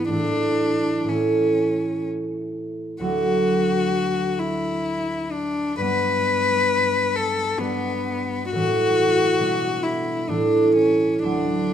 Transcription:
0.00 0.15 G#2 soft
0.00 0.14 B3 soft
0.09 1.04 A2 soft
0.09 1.07 E3 soft
0.09 1.07 A3 soft
0.09 1.10 D4 medium
0.09 1.07 E4 soft
1.04 3.06 A2 soft
1.04 3.06 E3 soft
1.09 3.01 A3 soft
1.09 2.06 C#4 soft
1.09 3.06 E4 soft
3.00 5.85 D2 soft
3.00 5.85 F#3 soft
3.00 5.85 A3 soft
3.00 4.40 F#4 medium
3.05 5.79 D4 soft
4.39 5.33 E4 soft
5.32 5.81 D4 medium
5.78 7.57 G2 soft
5.78 7.59 G3 soft
5.78 7.59 B3 soft
5.78 7.17 B4 medium
5.83 7.59 D4 soft
7.16 7.60 A4 medium
7.57 8.58 G2 soft
7.57 8.58 G3 soft
7.57 8.51 B3 medium
7.57 8.58 B3 soft
7.63 8.57 D4 soft
8.51 9.44 A2 soft
8.51 9.44 E3 soft
8.51 9.44 A3 soft
8.51 9.84 F#4 medium
8.55 9.44 C#4 soft
9.39 10.33 B2 soft
9.39 10.33 G3 soft
9.39 10.33 D4 soft
9.83 10.31 E4 medium
10.29 11.29 A2 soft
10.29 11.28 E3 soft
10.29 11.23 A3 soft
10.29 10.76 D4 medium
10.29 11.29 E4 soft
10.76 11.23 C#4 soft
11.23 11.73 D2 soft
11.23 11.73 F#3 soft
11.23 11.73 A3 soft
11.23 11.73 D4 soft

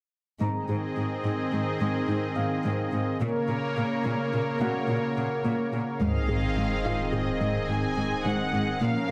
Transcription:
0.41 0.49 G#2 soft
0.41 3.17 D#3 medium
0.41 0.58 G#3 medium
0.41 3.17 C4 medium
0.41 3.17 G#4 medium
0.41 3.17 D#5 medium
0.41 2.05 A#5 soft
0.69 0.77 G#2 soft
0.69 0.86 G#4 soft
0.97 1.05 G#2 soft
0.97 1.14 G#4 soft
1.25 1.33 G#2 soft
1.25 1.42 G#3 medium
1.53 1.61 G#2 soft
1.53 1.70 G#4 soft
1.81 1.89 G#2 soft
1.81 1.98 G#3 medium
2.08 2.16 G#2 soft
2.08 2.26 D#4 soft
2.36 2.45 G#2 soft
2.36 2.54 C4 soft
2.36 4.01 F5 soft
2.65 2.73 G#2 soft
2.65 2.82 G#3 medium
2.93 3.01 G#2 soft
2.93 3.10 D#4 soft
3.21 3.29 A#2 medium
3.21 6.02 C#3 medium
3.21 3.38 A#3 medium
3.21 6.02 A#3 medium
3.21 6.02 A#4 medium
3.21 6.02 C#5 medium
3.49 3.57 A#2 soft
3.49 3.66 A#4 medium
3.77 3.85 A#2 soft
3.77 3.94 A#4 medium
4.05 4.13 A#2 soft
4.05 4.22 A#3 medium
4.33 4.41 A#2 soft
4.33 4.50 A#4 soft
4.61 4.69 A#2 medium
4.61 4.78 A#3 medium
4.61 5.97 F#4 soft
4.61 5.98 F#5 soft
4.89 4.97 A#2 soft
4.89 5.06 F4 medium
5.18 5.26 A#2 soft
5.18 5.34 C#4 medium
5.45 5.53 A#2 medium
5.45 5.62 A#3 medium
5.73 5.82 A#2 soft
5.73 5.90 F4 soft
6.01 6.09 G#2 soft
6.01 6.18 G#2 medium
6.01 8.78 D#3 medium
6.01 6.18 G#3 medium
6.01 8.78 C4 medium
6.01 8.78 G#4 medium
6.01 8.78 D#5 medium
6.01 7.09 F5 medium
6.01 sub drop soft
6.29 6.37 G#2 soft
6.29 6.46 G#2 soft
6.29 6.46 G#4 soft
6.57 6.65 G#2 soft
6.57 6.74 G#3 soft
6.57 6.74 D#4 medium
6.85 6.93 G#2 soft
6.85 7.02 G#3 soft
6.85 7.02 D#4 soft
6.85 8.50 F4 soft
6.85 8.50 F5 soft
7.12 7.20 G#2 soft
7.12 7.30 G#2 medium
7.12 7.30 G#4 soft
7.12 7.70 D#5 soft
7.41 7.49 G#2 soft
7.41 7.58 G#2 medium
7.41 7.58 G#3 medium
7.69 7.86 G#2 soft
7.69 7.77 G#2 soft
7.69 7.86 G#4 soft
7.69 8.26 G#5 medium
7.97 8.05 G#2 soft
7.97 8.14 G#2 soft
7.97 8.14 G#4 medium
8.25 8.33 G#2 soft
8.25 8.42 G#3 medium
8.25 8.43 D#4 soft
8.25 9.11 C5 soft
8.25 8.82 F#5 medium
8.53 8.61 G#2 soft
8.53 8.70 G#3 soft
8.53 8.70 D#4 soft
8.81 8.89 A#2 soft
8.81 8.98 A#2 medium
8.81 9.11 F3 medium
8.81 8.98 A#3 medium
8.81 9.11 C#4 medium
8.81 9.11 A#4 medium
8.81 9.11 F5 medium

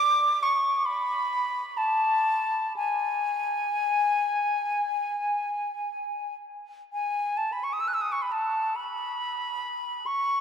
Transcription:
0.00 0.44 D6 medium
0.43 0.87 C#6 medium
0.85 1.79 B5 medium
1.77 2.76 A5 medium
2.76 6.34 G#5 medium
6.93 7.39 G#5 medium
7.37 7.54 A5 medium
7.52 7.65 B5 soft
7.63 7.74 C#6 soft
7.73 7.82 D#6 soft
7.80 7.89 E6 soft
7.88 7.95 F#6 soft
7.94 8.03 E6 medium
8.01 8.13 D#6 medium
8.12 8.23 C#6 soft
8.22 8.33 B5 soft
8.32 8.77 A5 medium
8.75 10.08 B5 medium
10.06 10.41 C#6 medium

